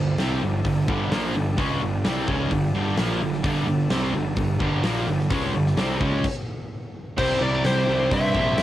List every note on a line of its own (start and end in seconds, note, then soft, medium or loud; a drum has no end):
0.00 0.17 G1 medium
0.00 0.14 G2 medium
0.00 0.14 D3 medium
0.00 6.21 G3 medium
0.00 6.21 D4 medium
0.00 6.21 A4 medium
0.18 0.40 C2 loud
0.18 0.41 C3 medium
0.18 0.41 G3 loud
0.18 0.42 C4 medium
0.18 snare medium
0.18 open hi-hat medium
0.42 0.64 G1 medium
0.42 0.60 G2 medium
0.42 0.61 D3 medium
0.65 0.86 G1 medium
0.65 0.84 G2 medium
0.65 0.84 D3 medium
0.65 kick medium
0.65 open hi-hat medium
0.88 1.10 G1 loud
0.88 1.11 G2 medium
0.88 1.11 D3 loud
0.88 1.11 G3 loud
0.88 kick loud
1.12 1.34 A#1 medium
1.12 1.34 A#2 medium
1.12 1.34 F3 loud
1.12 1.34 A#3 medium
1.12 snare loud
1.12 open hi-hat medium
1.35 1.57 G1 medium
1.35 1.53 G2 medium
1.35 1.54 D3 medium
1.58 1.80 C#2 loud
1.58 1.81 C#3 loud
1.58 1.81 G#3 loud
1.58 1.81 C#4 loud
1.58 kick loud
1.58 open hi-hat medium
1.82 2.04 G1 medium
1.82 2.00 G2 medium
1.82 2.01 D3 medium
2.05 2.27 C2 loud
2.05 2.27 C3 medium
2.05 2.27 G3 loud
2.05 2.28 C4 loud
2.05 snare loud
2.05 open hi-hat medium
2.27 2.50 C#2 loud
2.27 2.50 C#3 loud
2.27 2.51 G#3 loud
2.27 2.51 C#4 loud
2.27 kick medium
2.51 2.73 G1 medium
2.51 2.70 G2 medium
2.51 2.70 D3 medium
2.51 kick medium
2.51 open hi-hat medium
2.74 2.96 G1 loud
2.74 2.97 G2 medium
2.74 2.96 D3 medium
2.74 2.97 G3 medium
2.97 3.19 A#1 medium
2.97 3.20 A#2 medium
2.97 3.20 F3 loud
2.97 3.20 A#3 loud
2.97 snare loud
2.97 open hi-hat medium
3.21 3.43 G1 medium
3.21 3.40 G2 medium
3.21 3.40 D3 medium
3.33 snare soft
3.43 3.66 G1 loud
3.43 3.65 G2 loud
3.43 3.66 D3 loud
3.43 3.67 G3 loud
3.43 kick loud
3.43 open hi-hat medium
3.67 3.89 G1 medium
3.67 3.86 G2 medium
3.67 3.86 D3 medium
3.90 4.12 C2 loud
3.90 4.13 C3 loud
3.90 4.14 G3 loud
3.90 4.14 C4 loud
3.90 snare loud
3.90 open hi-hat soft
4.14 4.36 G1 loud
4.14 4.33 G2 medium
4.14 4.33 D3 medium
4.36 4.59 G1 medium
4.36 4.56 G2 medium
4.36 4.56 D3 medium
4.36 kick medium
4.36 open hi-hat medium
4.59 4.82 G1 medium
4.59 4.83 G2 medium
4.59 4.83 D3 medium
4.59 4.83 G3 loud
4.59 kick medium
4.83 5.06 A#1 loud
4.83 5.06 A#2 loud
4.83 5.07 F3 loud
4.83 5.07 A#3 loud
4.83 snare loud
4.83 open hi-hat medium
5.07 5.29 G1 medium
5.07 5.26 G2 medium
5.07 5.26 D3 medium
5.19 snare soft
5.30 5.52 C#2 loud
5.30 5.53 C#3 medium
5.30 5.53 G#3 loud
5.30 5.53 C#4 loud
5.30 kick loud
5.30 open hi-hat medium
5.54 5.76 G1 medium
5.54 5.73 G2 medium
5.54 5.73 D3 medium
5.66 snare soft
5.77 5.99 C2 medium
5.77 5.99 C3 medium
5.77 6.00 G3 loud
5.77 6.00 C4 loud
5.77 snare loud
5.77 open hi-hat medium
6.00 6.22 C#2 loud
6.00 6.23 C#3 loud
6.00 6.23 G#3 loud
6.00 6.23 C#4 loud
6.00 kick loud
6.24 kick loud
6.24 crash loud
7.18 7.39 C2 loud
7.18 7.39 C3 loud
7.18 7.41 G3 loud
7.18 8.63 C4 medium
7.18 7.40 C4 medium
7.18 7.41 E4 loud
7.18 8.63 G4 medium
7.18 7.40 G4 medium
7.18 7.42 C5 medium
7.18 8.63 D5 medium
7.18 kick loud
7.18 crash loud
7.30 snare soft
7.41 7.62 C2 loud
7.41 7.63 C3 medium
7.41 7.64 G3 medium
7.41 7.63 C4 medium
7.41 7.64 E4 medium
7.41 7.63 A#4 medium
7.41 7.65 D5 medium
7.64 7.85 C2 medium
7.64 7.86 C3 medium
7.64 7.87 G3 loud
7.64 7.87 C4 loud
7.64 7.87 E4 loud
7.64 8.09 G4 medium
7.64 8.13 C5 medium
7.64 snare medium
7.64 open hi-hat medium
7.87 8.09 C2 loud
7.87 8.10 C3 medium
7.87 8.10 G3 loud
7.87 8.11 C4 loud
7.87 8.11 E4 loud
8.11 8.32 G2 loud
8.11 8.33 C3 medium
8.11 8.33 G3 medium
8.11 8.34 C4 loud
8.11 8.34 E4 medium
8.11 8.63 C5 medium
8.11 8.63 E5 loud
8.11 kick loud
8.11 open hi-hat medium
8.34 8.55 A#1 loud
8.34 8.56 C3 medium
8.34 8.56 G3 medium
8.34 8.56 C4 medium
8.34 8.57 E4 medium
8.34 kick medium
8.57 8.63 F#1 loud
8.57 8.63 C3 medium
8.57 8.63 G3 medium
8.57 8.63 C4 medium
8.57 8.63 E4 loud
8.57 snare loud
8.57 open hi-hat medium